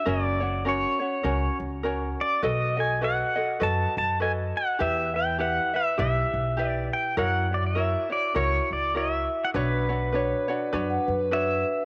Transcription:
0.05 0.83 F#1 medium
0.05 0.41 C#4 medium
0.05 0.41 F#4 medium
0.05 0.41 A#4 medium
0.05 0.39 C#5 medium
0.05 0.68 D5 medium
0.40 0.64 C#4 soft
0.40 0.65 F#4 soft
0.40 0.65 C#5 soft
0.65 1.00 C#4 medium
0.65 1.00 F#4 medium
0.65 1.00 A#4 medium
0.65 0.98 C#5 medium
0.65 1.57 C#5 medium
0.99 1.23 C#4 soft
0.99 1.23 F#4 soft
0.99 1.24 C#5 medium
1.23 1.47 C#2 medium
1.23 1.83 C#4 medium
1.23 1.84 F#4 medium
1.23 1.82 A#4 medium
1.23 1.84 C#5 medium
1.60 2.14 C#2 medium
1.83 2.42 C#4 medium
1.83 2.43 F#4 medium
1.83 2.42 A#4 medium
1.83 2.43 C#5 medium
2.21 2.43 D5 medium
2.42 3.20 B1 medium
2.42 2.78 F#4 medium
2.42 2.77 A4 medium
2.42 2.78 B4 medium
2.42 2.76 D#5 medium
2.42 2.80 D#5 medium
2.77 3.01 F#4 soft
2.77 3.01 A4 soft
2.77 3.02 D#5 soft
2.77 3.04 G#5 medium
3.01 3.36 F#4 medium
3.01 3.36 A4 medium
3.01 3.37 B4 medium
3.01 3.35 D#5 medium
3.01 3.63 F#5 loud
3.36 3.59 F#4 soft
3.36 3.60 A4 soft
3.36 3.60 D#5 soft
3.60 3.84 F#2 medium
3.60 4.19 F#4 medium
3.60 4.20 A4 medium
3.60 4.20 B4 medium
3.60 4.21 D#5 medium
3.60 3.97 A5 medium
3.97 4.51 F#2 medium
3.97 4.22 A5 medium
4.20 4.79 F#4 medium
4.20 4.80 A4 medium
4.20 4.79 B4 medium
4.20 4.80 D#5 medium
4.20 4.31 G#5 loud
4.57 4.82 F#5 medium
4.79 5.57 E2 medium
4.79 5.15 E4 medium
4.79 5.14 G4 medium
4.79 5.14 B4 medium
4.79 5.13 E5 medium
4.79 5.16 E5 medium
5.14 5.38 E4 soft
5.14 5.39 B4 soft
5.14 5.39 E5 soft
5.14 5.40 G5 medium
5.38 5.74 E4 medium
5.38 5.74 G4 medium
5.38 5.73 B4 medium
5.38 5.72 E5 medium
5.38 5.76 F#5 medium
5.74 5.97 E4 soft
5.74 5.97 B4 soft
5.74 5.98 E5 soft
5.74 5.99 E5 medium
5.97 6.21 B1 loud
5.97 6.58 E4 medium
5.97 6.56 G4 medium
5.97 6.56 B4 medium
5.97 6.59 E5 medium
5.97 6.69 E5 medium
6.33 6.88 B1 medium
6.57 7.17 E4 medium
6.57 7.16 G4 medium
6.57 7.18 B4 medium
6.57 7.18 E5 medium
6.69 6.93 D5 medium
6.93 7.18 G5 medium
7.17 7.94 F#2 medium
7.17 7.51 E4 medium
7.17 7.52 F#4 medium
7.17 7.50 A#4 medium
7.17 7.50 C#5 medium
7.17 7.54 F#5 medium
7.51 7.75 E4 soft
7.51 7.74 F#4 soft
7.51 7.75 C#5 soft
7.51 7.66 D5 medium
7.67 8.12 E5 medium
7.75 8.10 E4 medium
7.75 8.11 F#4 medium
7.75 8.09 A#4 medium
7.75 8.09 C#5 medium
8.10 8.34 E4 soft
8.10 8.34 F#4 soft
8.10 8.34 C#5 medium
8.10 8.37 D5 medium
8.34 8.58 C#2 medium
8.34 8.95 E4 medium
8.34 8.95 F#4 medium
8.34 8.93 A#4 medium
8.34 8.96 C#5 medium
8.34 8.72 C#5 medium
8.71 9.25 C#2 medium
8.71 8.97 D5 medium
8.95 9.54 E4 medium
8.95 9.54 F#4 medium
8.95 9.54 A#4 medium
8.95 9.55 C#5 medium
8.95 9.45 E5 medium
9.45 9.49 F#5 medium
9.54 10.31 B1 medium
9.54 9.89 D4 medium
9.54 9.88 F#4 medium
9.54 9.89 B4 medium
9.54 11.29 B4 medium
9.54 9.88 C#5 medium
9.89 10.13 D4 soft
9.89 10.13 F#4 soft
9.89 10.13 C#5 soft
10.12 10.48 D4 medium
10.12 10.48 F#4 medium
10.12 10.48 B4 medium
10.12 10.46 C#5 medium
10.12 10.47 C#5 medium
10.48 10.72 D4 soft
10.48 10.72 F#4 medium
10.48 10.73 C#5 medium
10.48 10.91 D5 medium
10.73 10.96 F#2 medium
10.73 11.32 D4 medium
10.73 11.32 F#4 medium
10.73 11.30 B4 medium
10.73 11.33 C#5 medium
10.90 11.08 F#5 medium
11.07 11.62 F#2 medium
11.07 11.85 B4 medium
11.31 11.85 D4 medium
11.31 11.85 F#4 medium
11.31 11.85 B4 medium
11.31 11.85 C#5 medium
11.31 11.85 E5 loud

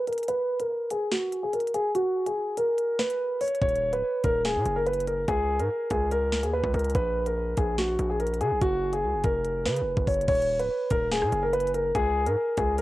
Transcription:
0.07 0.24 A#4 medium
0.07 closed hi-hat medium
0.13 closed hi-hat medium
0.18 closed hi-hat medium
0.23 closed hi-hat medium
0.28 0.58 B4 loud
0.28 closed hi-hat medium
0.60 0.89 A#4 medium
0.60 closed hi-hat medium
0.90 1.07 G#4 medium
0.90 closed hi-hat medium
1.11 1.41 F#4 medium
1.11 snare loud
1.32 closed hi-hat medium
1.43 1.51 G#4 medium
1.53 1.69 A#4 medium
1.53 closed hi-hat medium
1.60 closed hi-hat medium
1.67 closed hi-hat medium
1.74 1.90 G#4 medium
1.74 closed hi-hat medium
1.95 2.24 F#4 loud
1.95 closed hi-hat medium
2.26 2.56 G#4 medium
2.26 closed hi-hat medium
2.57 2.97 A#4 medium
2.57 closed hi-hat medium
2.78 closed hi-hat medium
2.99 3.38 B4 medium
2.99 snare loud
3.10 closed hi-hat medium
3.41 3.57 C#5 medium
3.41 closed hi-hat medium
3.41 open hi-hat medium
3.48 closed hi-hat medium
3.55 closed hi-hat medium
3.62 3.94 D#1 loud
3.62 3.91 C#5 loud
3.62 kick loud
3.62 closed hi-hat medium
3.69 closed hi-hat medium
3.75 closed hi-hat medium
3.93 4.03 C#1 loud
3.93 4.22 B4 medium
3.93 closed hi-hat medium
4.24 4.57 D#1 loud
4.24 4.40 A#4 medium
4.24 kick loud
4.24 closed hi-hat medium
4.45 4.74 G#4 medium
4.45 snare loud
4.55 4.65 A#2 loud
4.66 5.26 F#1 loud
4.66 closed hi-hat medium
4.76 4.84 A#4 medium
4.87 5.03 B4 medium
4.87 closed hi-hat medium
4.93 closed hi-hat medium
5.00 closed hi-hat medium
5.07 5.24 A#4 medium
5.07 closed hi-hat medium
5.28 5.61 C#2 loud
5.28 5.58 G#4 loud
5.28 kick loud
5.28 closed hi-hat medium
5.59 5.69 G#2 loud
5.59 5.89 A#4 medium
5.59 closed hi-hat medium
5.90 6.44 C#2 loud
5.90 6.07 G#4 medium
5.90 kick loud
5.90 closed hi-hat medium
6.11 6.41 A#4 medium
6.11 closed hi-hat medium
6.32 snare loud
6.43 6.63 D#2 loud
6.43 6.51 G#4 medium
6.43 closed hi-hat medium
6.53 6.70 B4 medium
6.64 6.74 C#2 loud
6.64 kick loud
6.74 6.94 C#2 loud
6.74 6.90 A#4 medium
6.74 closed hi-hat medium
6.79 closed hi-hat medium
6.84 closed hi-hat medium
6.90 closed hi-hat medium
6.95 7.55 A#1 loud
6.95 7.24 B4 loud
6.95 kick loud
6.95 closed hi-hat medium
7.26 7.56 A#4 medium
7.26 closed hi-hat medium
7.57 7.97 A#1 loud
7.57 7.74 G#4 medium
7.57 kick loud
7.57 closed hi-hat medium
7.78 8.08 F#4 medium
7.78 snare loud
7.99 8.42 A#1 loud
7.99 closed hi-hat medium
8.10 8.18 G#4 medium
8.20 8.36 A#4 medium
8.20 closed hi-hat medium
8.27 closed hi-hat medium
8.34 closed hi-hat medium
8.41 8.53 C#3 loud
8.41 8.57 G#4 medium
8.41 closed hi-hat medium
8.51 8.61 A#1 loud
8.61 9.05 F#1 loud
8.61 8.91 F#4 loud
8.61 kick loud
8.61 closed hi-hat medium
8.93 9.22 G#4 medium
8.93 closed hi-hat medium
9.03 9.15 C#2 loud
9.14 9.24 F#1 loud
9.24 9.67 F1 loud
9.24 9.63 A#4 medium
9.24 kick loud
9.24 closed hi-hat medium
9.45 closed hi-hat medium
9.66 9.83 C#3 medium
9.66 10.05 B4 medium
9.66 snare loud
9.76 closed hi-hat medium
9.81 9.96 F1 loud
9.97 10.07 F#1 loud
9.97 kick loud
10.07 10.27 F#1 loud
10.07 10.24 C#5 medium
10.07 kick loud
10.07 closed hi-hat medium
10.07 open hi-hat medium
10.14 closed hi-hat medium
10.21 closed hi-hat medium
10.28 10.61 D#1 loud
10.28 10.58 C#5 loud
10.28 kick loud
10.28 closed hi-hat medium
10.28 crash loud
10.35 closed hi-hat medium
10.42 closed hi-hat medium
10.59 10.69 C#1 loud
10.59 10.89 B4 medium
10.59 closed hi-hat medium
10.90 11.23 D#1 loud
10.90 11.07 A#4 medium
10.90 kick loud
10.90 closed hi-hat medium
11.12 11.41 G#4 medium
11.12 snare loud
11.22 11.32 A#2 loud
11.22 cross-stick loud
11.32 11.92 F#1 loud
11.32 closed hi-hat medium
11.43 11.51 A#4 medium
11.53 11.69 B4 medium
11.53 closed hi-hat medium
11.60 closed hi-hat medium
11.67 closed hi-hat medium
11.74 11.90 A#4 medium
11.74 closed hi-hat medium
11.95 12.28 C#2 loud
11.95 12.24 G#4 loud
11.95 kick loud
11.95 closed hi-hat medium
12.26 12.36 G#2 loud
12.26 12.56 A#4 medium
12.26 closed hi-hat medium
12.57 12.82 C#2 loud
12.57 12.74 G#4 medium
12.57 kick loud
12.57 closed hi-hat medium
12.78 12.82 A#4 medium
12.78 closed hi-hat medium

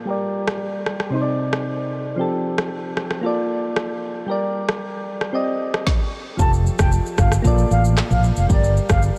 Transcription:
0.05 1.10 G3 medium
0.05 1.10 G4 medium
0.05 1.11 A#4 medium
0.10 1.12 D5 medium
0.48 cross-stick loud
0.86 cross-stick medium
1.00 cross-stick medium
1.10 2.15 C3 medium
1.10 2.16 C4 medium
1.10 2.16 D#4 medium
1.15 1.21 C5 medium
1.22 2.20 D5 medium
1.53 cross-stick loud
2.16 3.20 F3 medium
2.16 3.21 C4 medium
2.16 3.22 G4 medium
2.21 3.23 A4 medium
2.58 cross-stick loud
2.97 cross-stick medium
3.11 cross-stick medium
3.21 4.25 A#3 medium
3.21 4.26 F4 medium
3.21 4.27 A4 medium
3.26 4.28 D5 medium
3.76 cross-stick loud
4.26 5.31 G3 medium
4.26 5.31 G4 medium
4.26 5.32 A#4 medium
4.31 5.33 D5 medium
4.69 cross-stick loud
5.21 cross-stick medium
5.33 5.86 C4 medium
5.33 5.86 G4 medium
5.33 5.87 D5 medium
5.33 5.87 D#5 medium
5.74 cross-stick loud
5.87 kick loud
5.87 snare medium
6.37 6.68 F1 loud
6.37 7.41 F3 medium
6.37 7.42 F4 medium
6.37 7.43 G4 medium
6.37 6.51 A5 loud
6.37 kick loud
6.37 shaker medium
6.42 7.44 A4 medium
6.53 shaker medium
6.66 shaker medium
6.79 6.98 F1 medium
6.79 6.90 G5 medium
6.79 kick medium
6.79 cross-stick loud
6.79 shaker medium
6.92 shaker medium
7.06 shaker medium
7.18 7.37 G1 loud
7.18 7.30 F5 medium
7.18 kick medium
7.18 cross-stick loud
7.18 mid tom medium
7.18 shaker medium
7.32 cross-stick medium
7.32 shaker loud
7.42 7.63 A#1 loud
7.42 8.47 A#3 medium
7.42 8.47 F4 medium
7.42 8.48 A4 medium
7.42 kick medium
7.42 shaker medium
7.47 8.49 D5 medium
7.58 shaker soft
7.71 7.99 A1 medium
7.71 7.83 F5 medium
7.71 shaker medium
7.85 shaker loud
7.97 cross-stick loud
7.97 clap loud
7.97 shaker medium
8.10 8.30 A#1 loud
8.10 8.22 F5 medium
8.10 mid tom loud
8.10 shaker medium
8.24 shaker medium
8.36 8.46 F1 medium
8.36 8.48 F5 medium
8.36 shaker medium
8.47 8.78 G1 loud
8.47 9.18 G3 medium
8.47 9.18 G4 medium
8.47 9.18 A#4 medium
8.47 8.72 D5 medium
8.47 kick loud
8.47 shaker medium
8.52 9.18 D5 medium
8.64 shaker medium
8.77 shaker medium
8.89 9.08 G1 loud
8.89 9.01 F5 medium
8.89 kick loud
8.89 cross-stick loud
8.89 shaker loud
9.02 shaker medium

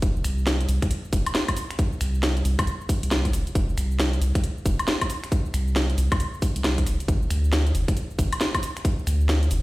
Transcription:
0.02 0.22 F1 loud
0.02 kick loud
0.02 closed hi-hat medium
0.02 shaker soft
0.16 shaker soft
0.24 0.66 C2 medium
0.24 finger snap medium
0.24 open hi-hat loud
0.24 shaker medium
0.38 shaker soft
0.47 snare loud
0.47 shaker soft
0.61 closed hi-hat soft
0.61 shaker soft
0.69 0.80 C2 loud
0.69 open hi-hat loud
0.69 shaker medium
0.82 finger snap medium
0.82 kick loud
0.82 closed hi-hat medium
0.82 shaker soft
0.91 closed hi-hat medium
0.91 shaker soft
1.05 shaker soft
1.13 1.24 F1 loud
1.13 kick loud
1.13 open hi-hat loud
1.13 shaker medium
1.26 closed hi-hat medium
1.26 high woodblock medium
1.26 shaker soft
1.35 snare loud
1.35 shaker soft
1.48 kick medium
1.48 closed hi-hat medium
1.48 high woodblock medium
1.48 shaker soft
1.57 open hi-hat loud
1.57 shaker medium
1.71 finger snap medium
1.71 closed hi-hat soft
1.71 shaker soft
1.79 kick loud
1.79 closed hi-hat medium
1.79 shaker soft
1.93 shaker soft
2.01 2.43 C2 medium
2.01 finger snap medium
2.01 open hi-hat loud
2.01 shaker medium
2.15 shaker soft
2.23 snare loud
2.23 shaker soft
2.37 closed hi-hat soft
2.37 shaker soft
2.45 2.56 C2 loud
2.45 open hi-hat loud
2.45 shaker medium
2.59 finger snap medium
2.59 kick loud
2.59 closed hi-hat medium
2.59 high woodblock medium
2.59 shaker soft
2.67 closed hi-hat medium
2.67 shaker soft
2.81 shaker soft
2.89 kick loud
2.89 open hi-hat loud
2.89 shaker medium
3.03 3.35 C2 loud
3.03 closed hi-hat medium
3.03 shaker soft
3.11 snare loud
3.11 shaker soft
3.25 kick medium
3.25 closed hi-hat medium
3.25 shaker soft
3.33 3.45 F1 medium
3.33 finger snap soft
3.33 open hi-hat loud
3.33 shaker medium
3.47 closed hi-hat soft
3.47 shaker soft
3.55 3.74 F1 loud
3.55 kick loud
3.55 closed hi-hat medium
3.55 shaker soft
3.69 shaker soft
3.77 4.19 C2 medium
3.77 finger snap medium
3.77 open hi-hat loud
3.77 shaker medium
3.91 shaker soft
4.00 snare loud
4.00 shaker soft
4.13 closed hi-hat soft
4.13 shaker soft
4.21 4.33 C2 loud
4.21 open hi-hat loud
4.21 shaker medium
4.35 finger snap medium
4.35 kick loud
4.35 closed hi-hat medium
4.35 shaker soft
4.44 closed hi-hat medium
4.44 shaker soft
4.57 shaker soft
4.65 4.77 F1 loud
4.65 kick loud
4.65 open hi-hat loud
4.65 shaker medium
4.79 closed hi-hat medium
4.79 high woodblock medium
4.79 shaker soft
4.88 snare loud
4.88 shaker soft
5.01 kick medium
5.01 closed hi-hat medium
5.01 high woodblock medium
5.01 shaker soft
5.10 open hi-hat loud
5.10 shaker medium
5.24 finger snap medium
5.24 closed hi-hat soft
5.24 shaker soft
5.32 kick loud
5.32 closed hi-hat medium
5.32 shaker soft
5.46 shaker soft
5.54 5.96 C2 medium
5.54 finger snap medium
5.54 open hi-hat loud
5.54 shaker medium
5.68 shaker soft
5.76 snare loud
5.76 shaker soft
5.90 closed hi-hat soft
5.90 shaker soft
5.98 6.09 C2 loud
5.98 open hi-hat loud
5.98 shaker medium
6.12 finger snap medium
6.12 kick loud
6.12 closed hi-hat medium
6.12 high woodblock medium
6.12 shaker soft
6.20 closed hi-hat medium
6.20 shaker soft
6.34 shaker soft
6.42 kick loud
6.42 open hi-hat loud
6.42 shaker medium
6.56 6.88 C2 loud
6.56 closed hi-hat medium
6.56 shaker soft
6.64 snare loud
6.64 shaker soft
6.78 kick medium
6.78 closed hi-hat soft
6.78 shaker soft
6.86 6.97 F1 medium
6.86 finger snap soft
6.86 open hi-hat loud
6.86 shaker medium
7.00 closed hi-hat soft
7.00 shaker soft
7.08 7.27 G1 loud
7.08 kick loud
7.08 closed hi-hat medium
7.08 shaker soft
7.22 shaker soft
7.30 7.72 D2 medium
7.30 finger snap medium
7.30 open hi-hat loud
7.30 shaker medium
7.44 shaker soft
7.53 snare loud
7.53 shaker soft
7.67 closed hi-hat soft
7.67 shaker soft
7.74 7.86 F1 loud
7.74 open hi-hat loud
7.74 shaker medium
7.88 finger snap medium
7.88 kick loud
7.88 closed hi-hat medium
7.88 shaker soft
7.97 closed hi-hat medium
7.97 shaker soft
8.10 shaker soft
8.19 8.30 G1 loud
8.19 kick loud
8.19 open hi-hat loud
8.19 shaker medium
8.33 closed hi-hat medium
8.33 high woodblock medium
8.33 shaker soft
8.41 snare loud
8.41 shaker soft
8.54 kick medium
8.54 closed hi-hat medium
8.54 high woodblock medium
8.54 shaker soft
8.63 open hi-hat loud
8.63 shaker medium
8.77 finger snap medium
8.77 closed hi-hat soft
8.77 shaker soft
8.85 kick loud
8.85 closed hi-hat medium
8.85 shaker soft
8.99 shaker soft
9.07 9.49 D2 medium
9.07 finger snap medium
9.07 open hi-hat loud
9.07 shaker medium
9.21 shaker soft
9.29 snare loud
9.29 shaker soft
9.43 closed hi-hat soft
9.43 shaker soft
9.51 9.62 F1 loud
9.51 open hi-hat loud
9.51 shaker medium

